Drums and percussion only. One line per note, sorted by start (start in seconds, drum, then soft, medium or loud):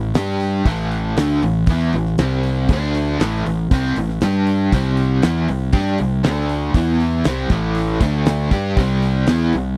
0.14 snare loud
0.14 open hi-hat medium
0.40 open hi-hat soft
0.65 kick loud
0.65 open hi-hat medium
0.92 open hi-hat soft
1.17 snare loud
1.17 open hi-hat medium
1.43 open hi-hat soft
1.67 kick loud
1.67 open hi-hat medium
1.93 open hi-hat soft
2.06 snare soft
2.18 snare loud
2.18 open hi-hat medium
2.43 open hi-hat medium
2.69 kick medium
2.69 open hi-hat medium
2.95 open hi-hat medium
3.20 snare loud
3.20 open hi-hat medium
3.46 open hi-hat medium
3.71 kick loud
3.71 open hi-hat medium
3.96 open hi-hat medium
4.09 snare soft
4.21 snare loud
4.21 open hi-hat medium
4.47 open hi-hat medium
4.72 kick loud
4.72 open hi-hat medium
4.97 open hi-hat medium
5.22 snare loud
5.22 open hi-hat medium
5.48 open hi-hat soft
5.73 kick loud
5.73 open hi-hat medium
5.98 open hi-hat medium
6.24 snare loud
6.24 open hi-hat medium
6.49 open hi-hat medium
6.74 kick medium
6.74 open hi-hat medium
7.00 open hi-hat medium
7.24 snare loud
7.24 open hi-hat medium
7.50 kick medium
7.50 open hi-hat medium
7.75 open hi-hat medium
8.01 kick loud
8.01 open hi-hat medium
8.26 snare loud
8.26 open hi-hat medium
8.51 kick loud
8.51 open hi-hat medium
8.77 kick loud
8.77 open hi-hat medium
9.02 open hi-hat soft
9.27 snare loud
9.27 open hi-hat medium
9.53 open hi-hat soft